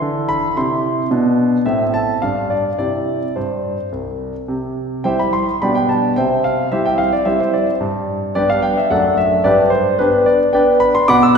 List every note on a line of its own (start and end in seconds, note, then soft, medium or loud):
0.00 0.45 D3 medium
0.00 0.53 E4 soft
0.00 0.29 C6 medium
0.29 0.56 B5 medium
0.57 1.01 C3 soft
0.57 1.07 E4 soft
0.57 1.07 C6 medium
1.11 1.55 B2 medium
1.11 1.62 D4 soft
1.66 2.11 A2 soft
1.66 2.19 C4 soft
1.66 1.83 E5 medium
1.94 2.19 A5 medium
2.22 2.68 G2 soft
2.22 2.76 D4 soft
2.22 2.51 F5 medium
2.50 2.76 D5 soft
2.79 3.19 C3 soft
2.79 3.24 E4 soft
2.79 3.25 G4 soft
2.79 3.36 D5 medium
3.36 3.76 G2 soft
3.36 3.89 C5 soft
3.92 4.32 C2 soft
4.48 5.03 C3 soft
5.04 5.45 G3 soft
5.04 5.45 E4 soft
5.04 5.45 G4 soft
5.04 5.18 C5 soft
5.04 5.18 E5 soft
5.04 5.18 G5 medium
5.19 5.33 B5 medium
5.33 5.58 C6 medium
5.62 6.15 B2 soft
5.62 6.13 G3 soft
5.62 6.13 D4 soft
5.62 6.13 G4 soft
5.62 5.74 D5 soft
5.62 5.74 G5 soft
5.62 5.75 B5 medium
5.75 5.88 G5 medium
5.89 6.13 A5 medium
6.16 6.69 C3 soft
6.16 6.42 C5 soft
6.16 6.42 E5 soft
6.16 6.43 G5 medium
6.44 6.68 F5 medium
6.72 7.11 G3 soft
6.72 7.11 C4 soft
6.72 7.11 E4 soft
6.72 6.84 G4 soft
6.72 6.84 C5 soft
6.72 6.85 E5 medium
6.86 6.99 G5 medium
6.98 7.12 F5 medium
7.13 7.26 D5 medium
7.25 7.65 G3 soft
7.25 7.65 C4 soft
7.25 7.66 E4 soft
7.25 7.39 G4 soft
7.25 7.39 C5 soft
7.25 7.39 E5 medium
7.40 7.53 C5 medium
7.53 7.70 D5 medium
7.80 8.34 G2 soft
8.35 8.75 G3 soft
8.35 8.75 B3 soft
8.35 8.75 D4 soft
8.35 8.48 G4 medium
8.35 8.48 B4 medium
8.35 8.49 D5 medium
8.50 8.63 F5 medium
8.62 8.76 G5 medium
8.77 8.90 E5 medium
8.90 9.43 F#2 soft
8.90 9.41 A3 soft
8.90 9.41 D4 soft
8.90 9.16 A4 soft
8.90 9.16 D5 soft
8.90 9.17 F#5 medium
9.17 9.45 E5 medium
9.44 9.98 G2 medium
9.44 9.70 G4 medium
9.44 9.70 B4 medium
9.44 9.61 D5 medium
9.70 9.98 C5 medium
9.99 10.38 B3 soft
9.99 10.25 D4 medium
9.99 10.25 G4 medium
9.99 10.26 B4 medium
10.26 10.53 D5 medium
10.53 10.93 B3 soft
10.53 10.93 D4 soft
10.53 10.79 B4 medium
10.53 10.79 D5 medium
10.53 10.69 G5 medium
10.80 10.94 B5 medium
10.95 11.08 C6 medium
11.08 11.38 B2 medium
11.08 11.22 F#5 medium
11.08 11.22 B5 medium
11.08 11.22 D6 medium
11.23 11.36 E6 medium